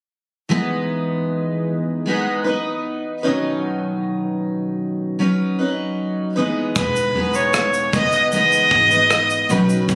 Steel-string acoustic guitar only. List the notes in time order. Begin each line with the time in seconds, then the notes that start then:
0.49 E3 G#3 B3 D#4 B4
2.06 G#3 B3 D#4 B4
2.44 B3 D#4 B4
3.23 B2 D#3 F#3 C#4 D#4 B4
5.19 F#3 C#4 D#4 B4
5.59 F#3 C#4 D#4 B4
6.36 E3 G#3 B3 D#4 B4
6.75 G#3 B3 D#4 B4
7.14 G#3 B3 D#4 B4
7.92 G#3 B3 D#4 B4
8.32 E3 G#3 B3 D#4 B4
8.91 B3 D#4 B4
9.49 B2 D#3 F#3 C#4 D#4 B4
9.88 F#3 C#4 D#4 B4